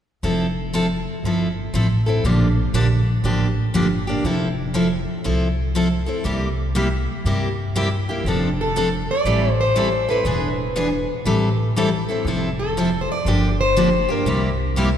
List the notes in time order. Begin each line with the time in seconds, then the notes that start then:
0.23 F1 F3 C4 E4 A4
0.73 F3 C4 E4 A4
1.23 G1 F3 C4 E4 A4
1.73 A1 F3 C4 E4 A4
2.06 C4 E4 A4
2.24 A#1 D3 F3 A#3 D4 G4
2.73 A#1 D3 F3 A#3 D4 G4
3.23 A1 D3 F3 A#3 D4 G4
3.74 G1 D3 F3 A#3 D4 G4
4.07 A#3 D4 G4
4.24 F1 F3 C4 E4 A4
4.74 F3 C4 E4 A4
5.24 C2 F3 C4 E4 A4
5.75 F3 C4 E4 A4
6.06 C4 E4 A4
6.24 C2 C3 G3 A#3 E4 G4
6.75 C3 G3 A#3 E4 G4
7.25 G2 C3 G3 A#3 E4 G4
7.76 C3 G3 A#3 E4 G4
8.09 A#3 E4 G4
8.24 F1 F3 C4 D4 A4
8.61 A4
8.76 F3 C4 D4 A4
9.11 D5
9.24 A1 E3 G3 C4 E4 A4
9.61 C5
9.76 E3 G3 C4 E4 A4
10.09 C4 E4 A4 B4
10.24 E1 E3 B3 D4 G#4
10.76 E3 B3 D4 G#4
11.25 A1 E3 G3 C4 E4 A4
11.76 E3 G3 C4 E4 A4
12.09 C4 E4 A4
12.25 F1 F3 C4 E4 A4
12.59 A4
12.77 F3 C4 E4 A4
13.01 C5
13.12 D5
13.25 G1 D3 F3 A#3 D4 G4
13.61 C5
13.77 D3 F3 A#3 D4 G4
14.09 A#3 D4 G4 A#4
14.25 C2 C3 G3 A#3 E4 G4
14.76 C3 G3 A#3 E4 G4